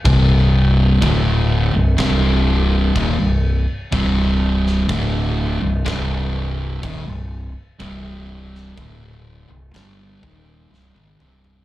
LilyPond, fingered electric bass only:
\new Staff \with { instrumentName = "Fingered electric bass" } { \clef bass \time 4/4 \key c \dorian \tempo 4 = 62 c,,4 d,,8. c,,16 c,,4 ees,,16 c,,8 r16 | c,,4 d,,8. c,,16 c,,4 ees,,16 c,,8 r16 | c,,4 d,,8. c,,16 g,,8 ees,,8 c,,16 aes,,16 c,,8 | }